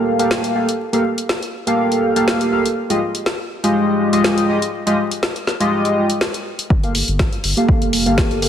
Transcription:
Already playing: A#3 G4 A4 F5
0.19 A#3 G4 A4 F5, closed hi-hat
0.31 snare
0.44 closed hi-hat
0.55 A#3 G4 A4 F5
0.69 closed hi-hat
0.93 A#3 G4 A4 F5, closed hi-hat
1.18 closed hi-hat
1.29 snare
1.42 closed hi-hat
1.67 A#3 G4 A4 F5, closed hi-hat
1.92 closed hi-hat
2.16 A#3 G4 A4 F5, closed hi-hat
2.28 snare
2.41 closed hi-hat
2.52 A#3 G4 A4 F5
2.66 closed hi-hat
2.90 G#3 F4 G4 D#5, closed hi-hat
3.15 closed hi-hat
3.26 snare
3.63 G#3 F4 G4 D#5, closed hi-hat
4.13 G#3 F4 G4 D#5, closed hi-hat
4.24 snare
4.38 closed hi-hat
4.49 G#3 F4 G4 D#5
4.62 closed hi-hat
4.86 G#3 F4 G4 D#5, closed hi-hat
5.11 closed hi-hat
5.23 snare
5.36 closed hi-hat
5.47 snare
5.60 G#3 F4 G4 D#5, closed hi-hat
5.85 closed hi-hat
6.10 closed hi-hat
6.21 snare
6.34 closed hi-hat
6.59 closed hi-hat
6.70 G1, kick
6.83 A#3 G4 A4 F5, closed hi-hat
6.95 open hi-hat
7.08 G1, closed hi-hat
7.19 kick, snare
7.33 closed hi-hat
7.44 G1, open hi-hat
7.57 A#3 G4 A4 F5, closed hi-hat
7.69 kick
7.82 F1, closed hi-hat
7.93 open hi-hat
8.06 G1 A#3 G4 A4 F5, closed hi-hat
8.18 kick, snare
8.31 G1, closed hi-hat
8.42 A#3 G4 A4 F5, open hi-hat

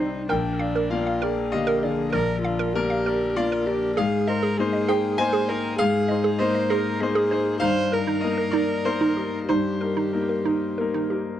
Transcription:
Already playing: C2 G3 G4
0.00 D4 D#4 C5
0.29 A#1 D4 A#4 G5
0.59 D4 D5 F5
0.76 A#4
0.90 A#3 D4 F4 D5 F5
1.07 F5
1.22 D4 G#4 A#4 D5
1.52 D3 A#3 G4 D#5 F5
1.67 A#4
1.82 D3 G#4 D5 F5
2.13 A#1 A#4 D5
2.42 D4 F4 D5 F5
2.59 A#4
2.73 A#3 D4 G4 A#4 D5
2.90 F5
3.06 D4 A#4 D5
3.36 A#3 D4 F4 D5 F5
3.52 A#4
3.66 D4 G4 D5
3.97 G#2 G#4 F5
4.27 D#4 A#4 C5 D#5
4.43 G#4
4.58 A#3 D#4 G#4 C5
4.73 D#5
4.88 D#4 G#4 C5 G5
5.18 A#3 D#4 C5 D#5 G#5
5.33 G#4
5.48 D#4 A#4 C5
5.78 G#2 G#4 F5
6.08 D#4 C5 D#5
6.24 G#4
6.38 A#3 D#4 C5 D#5
6.55 D#5
6.70 D#4 G#4 A#4 C5
7.00 A#3 D#4 G#4 C5 D#5
7.15 G#4
7.31 D#4 C5
7.60 G2 D#4 C5 F5
7.92 D#4 A#4
8.07 D#4
8.21 A#3 D#4 A#4 D#5
8.38 A#4
8.51 D#4 A#4 D5
8.85 A#3 D#4 A#4 C5
9.01 D#4
9.17 D#4 G4 A#4
9.47 G2 D#4 G4 C5
9.81 D#4 A#4
9.97 D#4
10.13 A#3 D#4 A#4
10.29 A#4
10.45 D#4 A#4
10.78 A#3 D#4 A#4
10.94 D#4
11.10 D#4 G4 A#4

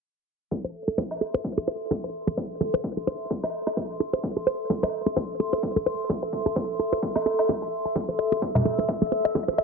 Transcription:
0.51 A4, kick
0.59 E5
0.64 C5
0.88 A4
0.96 C5 C6, kick
1.11 low woodblock
1.21 A4
1.34 C5
1.44 kick
1.57 A4
1.68 C5
1.91 A4, kick
2.04 C5
2.27 A4
2.37 C5, kick
2.61 A4, kick
2.74 C5
2.84 kick
2.97 A4
3.07 C5
3.30 A4, kick
3.44 C5, low woodblock
3.67 A4, low woodblock
3.77 C5, kick
4.00 A4
4.13 C5
4.23 kick
4.37 A4
4.47 C5
4.70 A4, kick
4.83 C5, low woodblock
5.06 A4
5.16 C5, kick
5.40 A4
5.53 C5
5.63 kick
5.76 A4
5.86 C5
6.09 A4, kick
6.23 C5
6.33 kick
6.46 A4
6.56 C5, kick
6.79 A4
6.92 C5
7.03 kick
7.16 A4, low woodblock
7.26 A4
7.39 low woodblock
7.49 A4, kick
7.62 A4
7.85 A5
7.95 A4, kick
8.09 C5
8.19 E5
8.32 A4
8.40 C5 E6, kick
8.55 E5, low conga, low woodblock
8.65 A4
8.78 C5
8.89 E5, kick
9.02 A4
9.12 C5
9.25 E5
9.35 A4, kick
9.48 C5
9.58 E5

